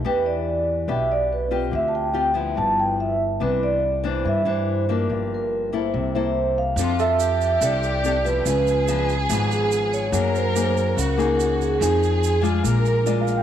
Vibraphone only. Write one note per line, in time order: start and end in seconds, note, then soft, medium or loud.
0.06 0.27 B4 medium
0.26 0.91 D5 medium
0.89 1.08 E5 medium
1.12 1.32 D5 medium
1.32 1.51 B4 medium
1.75 1.87 E5 medium
1.88 1.95 A5 medium
1.95 2.54 G5 medium
2.57 2.79 A5 loud
2.80 3.00 G5 medium
3.00 3.19 E5 medium
3.43 3.52 B4 medium
3.63 4.06 D5 medium
4.06 4.27 C5 medium
4.27 4.48 E5 medium
4.49 4.87 C5 medium
4.92 5.33 A#4 medium
5.34 5.72 A#4 medium
5.76 6.14 C5 medium
6.15 6.58 C5 medium
6.58 6.96 F5 loud
7.00 7.64 E5 medium
7.62 7.83 D5 medium
7.85 8.23 D5 medium
8.25 9.05 B4 medium
9.51 9.93 G#4 medium
9.93 10.36 C#5 loud
10.37 10.94 C5 medium
10.99 11.19 A#4 medium
11.20 11.62 A#4 medium
11.62 12.41 G#4 medium
12.88 13.26 A#4 medium
13.29 13.43 F5 medium